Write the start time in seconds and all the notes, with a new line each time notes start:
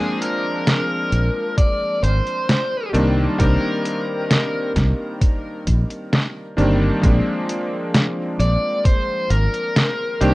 Already playing: F3 G#3 A#3 C4 D4 G#4
0.22 A#4, closed hi-hat
0.67 snare, closed hi-hat
1.12 A#1, closed hi-hat
1.58 D5, kick, closed hi-hat
2.03 G#1 C5, closed hi-hat
2.27 closed hi-hat
2.49 snare, closed hi-hat
2.93 C2 D#3 G3 A#3 C4 D4, closed hi-hat
3.38 C2 D#3 G3 A#3 C4 D4 A#4, kick, closed hi-hat
3.85 closed hi-hat
4.31 snare, closed hi-hat
4.76 C2, kick, snare, closed hi-hat
5.22 kick, closed hi-hat
5.67 A#1, kick, closed hi-hat
5.90 closed hi-hat
6.13 snare, closed hi-hat
6.57 G1 D#3 G3 A#3 C4 D4, closed hi-hat
7.01 A#1 F3 G#3 A#3 C4 D4, kick, closed hi-hat
7.49 closed hi-hat
7.94 snare, closed hi-hat
8.39 A#1 D5, closed hi-hat
8.85 C5, kick, closed hi-hat
9.30 G#1 A#4, closed hi-hat
9.54 closed hi-hat
9.76 snare, closed hi-hat
10.21 C2 D#3 G3 A#3 C4 D4 G4, closed hi-hat